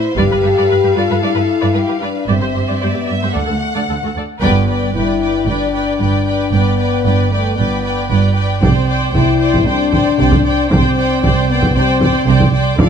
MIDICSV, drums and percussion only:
0, 0, Header, 1, 2, 480
1, 0, Start_track
1, 0, Tempo, 530504
1, 160, Time_signature, 4, 2, 24, 8
1, 4482, Tempo, 522648
1, 11773, End_track
2, 0, Start_track
2, 0, Title_t, "Taiko and cinematic ensemble drums"
2, 166, Note_on_c, 9, 41, 46
2, 257, Note_off_c, 9, 41, 0
2, 3998, Note_on_c, 9, 41, 50
2, 4089, Note_off_c, 9, 41, 0
2, 7855, Note_on_c, 9, 41, 73
2, 7946, Note_off_c, 9, 41, 0
2, 8331, Note_on_c, 9, 41, 55
2, 8423, Note_off_c, 9, 41, 0
2, 8691, Note_on_c, 9, 41, 59
2, 8783, Note_off_c, 9, 41, 0
2, 9050, Note_on_c, 9, 41, 62
2, 9142, Note_off_c, 9, 41, 0
2, 9409, Note_on_c, 9, 41, 70
2, 9501, Note_off_c, 9, 41, 0
2, 9768, Note_on_c, 9, 41, 79
2, 9860, Note_off_c, 9, 41, 0
2, 10248, Note_on_c, 9, 41, 64
2, 10340, Note_off_c, 9, 41, 0
2, 10606, Note_on_c, 9, 41, 69
2, 10698, Note_off_c, 9, 41, 0
2, 10958, Note_on_c, 9, 41, 63
2, 11050, Note_off_c, 9, 41, 0
2, 11321, Note_on_c, 9, 41, 77
2, 11413, Note_off_c, 9, 41, 0
2, 11676, Note_on_c, 9, 41, 85
2, 11767, Note_off_c, 9, 41, 0
2, 11773, End_track
0, 0, End_of_file